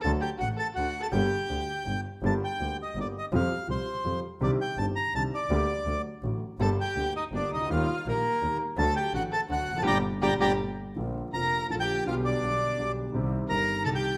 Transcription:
X:1
M:3/4
L:1/16
Q:1/4=166
K:Gm
V:1 name="Bandoneon"
a2 g2 ^f2 a2 f3 a | g8- g2 z2 | a2 g4 e2 d2 e2 | f4 c6 z2 |
d2 g2 a2 b2 a2 d2- | d6 z6 | a2 g4 e2 d2 e2 | f4 B6 z2 |
a2 g2 ^f2 a2 f3 a | [dgb]2 z2 [dgb]2 [dgb]2 z4 | [K:Bb] z4 b4 a g3 | f2 d8 z2 |
z4 b4 a g3 |]
V:2 name="Violin"
A2 G2 ^F2 A2 F3 A | G8- G2 z2 | z12 | z12 |
z12 | z12 | A2 G4 E2 D2 E2 | F4 B,6 z2 |
A2 G2 ^F2 A2 F3 A | G2 z2 G2 G2 z4 | [K:Bb] z4 B4 A G3 | F2 D8 z2 |
z4 B4 A G3 |]
V:3 name="Grand piano" clef=bass
[D,,D,^F,A,^F]2 z2 [A,,,A,,]2 z2 [D,,D,]2 z2 | [G,,,G,,D,G,B,G]2 z2 [D,,D,]2 z2 [G,,,G,,]2 z2 | [G,,,G,,D,G,B,G]2 z2 [D,,D,G,B,G]2 z2 [G,,,G,,D,G,B,G]2 z2 | [F,,F,G,CG]2 z2 [C,,C,F,G,CG]2 z2 [F,,F,G,CG]2 z2 |
[C,,C,E,CDG]2 z2 [G,,,G,,E,CDG]2 z2 [C,,C,E,CDG]2 z2 | [D,,D,G,B,G]2 z2 [D,,D,^F,A,^F]2 z2 [A,,,A,,D,F,A,F]2 z2 | [G,,,G,,D,G,B,G]2 z2 [D,,D,G,B,G]2 z2 [G,,,G,,D,G,B,G]2 z/2 C,,/2 ^C,,/2 D,,/2 | [E,,E,G,B,G]2 z2 [B,,,B,,E,G,B,G]2 z2 [E,,E,G,B,G]2 z2 |
[D,,D,^F,A,^F]2 z2 [A,,,A,,D,F,A,F]2 z2 [D,,D,F,A,F]2 z/2 =E,,/2 =F,,/2 ^F,,/2 | [B,,D,G,]2 z2 [B,,D,G,]2 [B,,D,G,]2 z4 | [K:Bb] [B,,,B,,D,F,B,F]4 [F,,,F,,D,F,B,F]4 [B,,,B,,D,F,B,F]4 | [=B,,,=B,,D,G,=B,G]4 [B,,,B,,D,G,B,G]4 [B,,,B,,D,G,B,G]4 |
[C,,C,E,G,CG]4 [G,,,G,,E,G,CG]4 [C,,C,E,G,CG]4 |]
V:4 name="Double bass" clef=bass
D,,2 z2 A,,,2 z2 D,,2 z2 | G,,,2 z2 D,,2 z2 G,,,2 z2 | G,,,2 z2 D,,2 z2 G,,,2 z2 | F,,2 z2 C,,2 z2 F,,2 z2 |
C,,2 z2 G,,,2 z2 C,,2 z2 | D,,2 z2 D,,2 z2 A,,,2 z2 | G,,,2 z2 D,,2 z2 G,,,2 ^C,,2 | E,,2 z2 B,,,2 z2 E,,2 z2 |
D,,2 z2 A,,,2 z2 D,,2 F,,,2 | G,,,2 z2 G,,,2 G,,,2 z4 | [K:Bb] B,,,4 F,,,4 B,,,4 | =B,,,4 B,,,4 B,,,4 |
C,,4 G,,,4 C,,4 |]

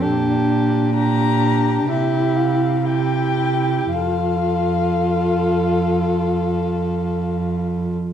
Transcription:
X:1
M:4/4
L:1/8
Q:1/4=58
K:F
V:1 name="Violin"
z2 b2 e f g2 | f6- f z |]
V:2 name="Violin"
G2 G2 G2 G2 | A8 |]
V:3 name="Viola"
D2 D2 E2 E2 | F8 |]
V:4 name="Cello" clef=bass
B,,4 C,4 | F,,8 |]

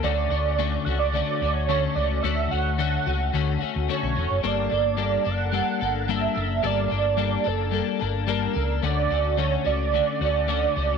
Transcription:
X:1
M:4/4
L:1/16
Q:1/4=109
K:D
V:1 name="Soft synth lead"
d6 f d4 c3 d2 | e2 f8 z2 c4 | d6 f6 e4 | d6 A4 z2 _B4 |
d4 c2 d8- d2 |]
V:2 name="Clean electric guitar"
[D,A,CF]2 [A,CF]2 [D,A,CF]2 [A,CF]2 [D,A,CF]2 [A,CF]2 [D,A,CF]2 [A,CF]2 | [D,A,CF]2 [A,CF]2 [D,A,CF]2 [A,CF]2 [D,A,CF]2 [A,CF]2 [D,A,CF]2 [A,CF]2 | [G,_B,DA]2 [B,DA]2 [G,B,DA]2 [B,DA]2 [G,B,DA]2 [B,DA]2 [G,B,DA]2 [B,DA]2 | [G,_B,DA]2 [B,DA]2 [G,B,DA]2 [B,DA]2 [G,B,DA]2 [B,DA]2 [G,B,DA]2 [B,DA]2 |
[D,A,CF]2 [A,CF]2 [D,A,CF]2 [A,CF]2 [D,A,CF]2 [A,CF]2 [D,A,CF]2 [A,CF]2 |]
V:3 name="Fingered electric bass" clef=bass
D,,2 D,,4 C,,3 z D,,4 C,,2 | D,,2 D,,4 C,,2 D,,2 z D,, z B,,, E,,, F,,, | G,,,2 G,,,4 F,,,3 z G,,,4 F,,,2 | G,,,2 G,,,4 F,,,3 z G,,,4 C,,2 |
D,,2 D,,4 C,,3 z D,,4 C,,2 |]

